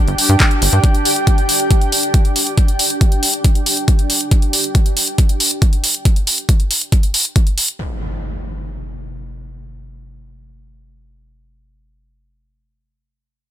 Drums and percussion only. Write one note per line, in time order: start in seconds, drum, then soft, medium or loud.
0.08 closed hi-hat medium
0.18 open hi-hat loud
0.29 closed hi-hat soft
0.40 kick loud
0.40 clap loud
0.40 closed hi-hat medium
0.51 closed hi-hat medium
0.62 open hi-hat loud
0.73 closed hi-hat soft
0.84 kick loud
0.84 closed hi-hat medium
0.95 closed hi-hat soft
1.05 open hi-hat loud
1.16 closed hi-hat medium
1.27 kick loud
1.27 closed hi-hat medium
1.38 closed hi-hat soft
1.49 open hi-hat loud
1.60 closed hi-hat medium
1.71 kick loud
1.71 closed hi-hat medium
1.81 closed hi-hat medium
1.92 open hi-hat loud
2.03 closed hi-hat soft
2.14 kick loud
2.14 closed hi-hat medium
2.25 closed hi-hat medium
2.36 open hi-hat loud
2.47 closed hi-hat soft
2.58 kick loud
2.58 closed hi-hat medium
2.68 closed hi-hat medium
2.79 open hi-hat loud
2.90 closed hi-hat medium
3.01 kick loud
3.01 closed hi-hat medium
3.12 closed hi-hat medium
3.23 open hi-hat loud
3.34 closed hi-hat medium
3.44 kick loud
3.44 closed hi-hat medium
3.55 closed hi-hat medium
3.66 open hi-hat loud
3.77 closed hi-hat soft
3.88 kick loud
3.88 closed hi-hat medium
3.99 closed hi-hat medium
4.10 open hi-hat medium
4.21 closed hi-hat medium
4.31 kick loud
4.31 closed hi-hat medium
4.42 closed hi-hat medium
4.53 open hi-hat loud
4.64 closed hi-hat medium
4.75 kick loud
4.75 closed hi-hat medium
4.86 closed hi-hat medium
4.97 open hi-hat loud
5.08 closed hi-hat medium
5.18 kick loud
5.18 closed hi-hat medium
5.29 closed hi-hat medium
5.40 open hi-hat medium
5.51 closed hi-hat medium
5.62 kick loud
5.62 closed hi-hat medium
5.73 closed hi-hat medium
5.84 open hi-hat loud
5.95 closed hi-hat medium
6.05 kick loud
6.05 closed hi-hat medium
6.16 closed hi-hat medium
6.27 open hi-hat loud
6.38 closed hi-hat medium
6.49 kick loud
6.49 closed hi-hat medium
6.60 closed hi-hat medium
6.71 open hi-hat loud
6.81 closed hi-hat medium
6.92 kick loud
6.92 closed hi-hat medium
7.03 closed hi-hat medium
7.14 open hi-hat loud
7.25 closed hi-hat medium
7.36 kick loud
7.36 closed hi-hat medium
7.47 closed hi-hat medium
7.58 open hi-hat medium
7.68 closed hi-hat medium